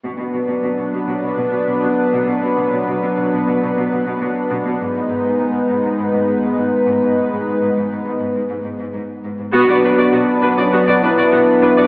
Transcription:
X:1
M:4/4
L:1/16
Q:1/4=101
K:Bdor
V:1 name="Viola section"
z16 | z16 | z16 | z16 |
[B,F] [Fd] [DB] [Fd] [B,F] z [DB] [Fd] [B,F] [Fd] [DB] [Fd] [B,F] z [DB] [Fd] |]
V:2 name="French horn section"
z16 | z16 | z16 | z16 |
F4 D3 C B,2 E6 |]
V:3 name="Analog synth pad"
[F,B,DB]16- | [F,B,DB]16 | [G,B,^DB]16- | [G,B,^DB]16 |
[F,B,DB]16 |]
V:4 name="Cello section" clef=bass
B,, B,, B,, B,, B,, B,, B,, B,, B,, B,, B,, B,, B,, z B,, B,, | B,, B,, B,, B,, B,, B,, B,, B,, B,, B,, B,, B,, B,, z B,, B,, | G,, G,, G,, G,, G,, G,, G,, G,, G,, G,, G,, G,, G,, z G,, G,, | G,, G,, G,, G,, G,, G,, G,, G,, G,, G,, G,, G,, G,, z G,, G,, |
B,, B,, B,, B,, B,, z B,, B,, B,, B,, B,, B,, B,, z B,, B,, |]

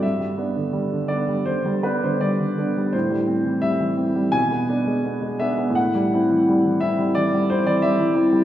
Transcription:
X:1
M:4/4
L:1/16
Q:1/4=85
K:Ador
V:1 name="Grand piano"
e6 d2 c2 B c d4 | c4 e4 ^g6 e2 | f6 e2 d2 c d e4 |]
V:2 name="Grand piano" clef=bass
G,, G, [B,D] D, G, D, [B,D] G, D, G, [B,D] D, G, D, [B,D] G, | A,, G, C E, G, E, C G, B,, B, [B,D] ^G, B, G, [B,D] B, | A,, G, [CE] E, G, E, [CE] G, E, G, [CE] E, G, E, [CE] G, |]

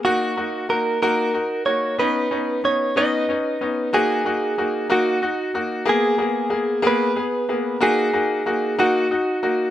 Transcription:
X:1
M:6/8
L:1/8
Q:3/8=62
K:Ebm
V:1 name="Clean electric guitar"
G2 B B2 d | =B2 ^c [B^d]3 | A3 G3 | A3 c3 |
A3 G3 |]
V:2 name="Grand piano"
[B,EG] [B,EG] [B,EG] [B,EG] [EG] [B,EG] | [=B,^C^D] [B,CD] [B,CD] [B,CD] [CD] [B,CD] | [B,EG] [B,EG] [B,EG] [B,EG] [EG] [B,EG] | [B,CA] [B,CA] [B,CA] [B,CA] [CA] [B,CA] |
[B,EG] [B,EG] [B,EG] [B,EG] [EG] [B,EG] |]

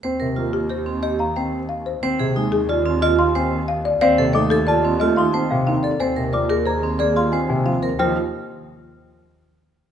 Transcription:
X:1
M:6/4
L:1/8
Q:1/4=181
K:Eb
V:1 name="Celesta"
z6 z b z4 | z6 z c' z4 | f z d' z =a z2 c' z f z2 | a z d' z b z2 c' z a z2 |
g z8 z3 |]
V:2 name="Marimba"
z3 G c z e f g z f c | z3 A d z e f a z f d | d z e =A d z e f =a z f d | c z d A c z d f a z f c |
c z8 z3 |]
V:3 name="Vibraphone"
c B F z G C G z c z3 | c A E z F C F z c z3 | c =A E A F C F E c z C A | c B F B A C A F c z C B |
F z8 z3 |]
V:4 name="Grand piano"
C C, B, z4 z C z3 | C C, A, z4 z C z3 | C C, =A, z3 A, z C C, E, z | C C, B, z3 B, z C C, F, z |
F, z8 z3 |]
V:5 name="Double bass section" clef=bass
E,,12 | E,,12 | E,,12 | E,,12 |
E,, z8 z3 |]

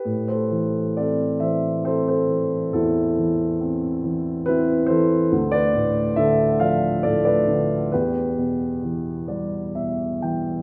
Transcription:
X:1
M:3/4
L:1/16
Q:1/4=68
K:Am
V:1 name="Grand piano"
[GB] [Ac]3 [Ad]2 [ce]2 [Ac] [Ac]3 | [EA]8 [EB]2 [Ac]2- | [Ac] [Bd]3 [Ae]2 [df]2 [Ad] [Bd]3 | [GB]8 z4 |]
V:2 name="Grand piano" clef=bass
A,,2 E,2 C2 E,2 C2 E,2 | E,,2 E,2 C2 E,2 C2 E,2 | D,,2 A,,2 D,2 F,2 A,,2 D,2 | E,,2 B,,2 E,2 [G,d]2 [B,,e]2 [E,g]2 |]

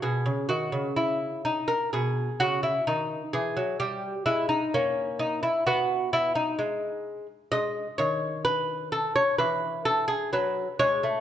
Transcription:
X:1
M:4/4
L:1/16
Q:1/4=64
K:B
V:1 name="Lute"
G2 F2 E2 D A G2 F E D2 G2 | =G2 E D _D2 ^D E F2 E D z4 | [K:E] d2 c2 B2 A c B2 A G B2 c2 |]
V:2 name="Lute" clef=bass
B,, C, D, C,4- C, B,,2 C,2 D,2 E, F, | =G,2 ^G,2 _B,4 =B,4 G,4 | [K:E] G,2 D,6 E,4 F,2 G, A, |]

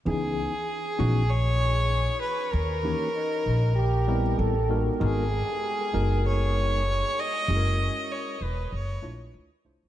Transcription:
X:1
M:4/4
L:1/16
Q:"Swing 16ths" 1/4=97
K:C#dor
V:1 name="Fiddle"
G8 c6 B2 | A12 z4 | G8 c6 d2- | d4 c2 B2 c4 z4 |]
V:2 name="Trombone"
z16 | z4 D4 =G4 =A3 z | z16 | z16 |]
V:3 name="Tine electric piano"
[E,B,CDG]2 z4 [E,B,CDF]2 z8 | z2 [E,A,CD=G]2 z6 [=G,B,^B,EA]2 z2 [^G,=B,DFA]2 | [G,B,DFA]2 z4 [G,B,DFA]6 z4 | [G,CEFGA]6 z4 [=A,=DE^Ec]2 z2 [A,D=E=F=c]2 |]
V:4 name="Upright bass" clef=bass
C,,3 z3 A,,,6- A,,, z3 | D,,3 z3 A,,,6 =A,,,4 | G,,,3 z3 F,,,6- F,,, z3 | F,,,3 z3 E,,,2 F,,,2 A,,,2 =D,, z =C,, ^C,, |]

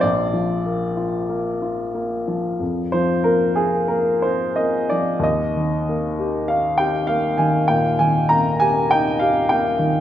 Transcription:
X:1
M:4/4
L:1/16
Q:1/4=48
K:Eb
V:1 name="Upright piano"
d8- d c B A B c e d | e4 f g f a g a b a g f g2 |]
V:2 name="Upright piano"
B,,, F, B, F B, F B, F, F,, F, B, F B, F B, F, | E,, E, B, G E G B, E, B,, E, B, G E G B, E, |]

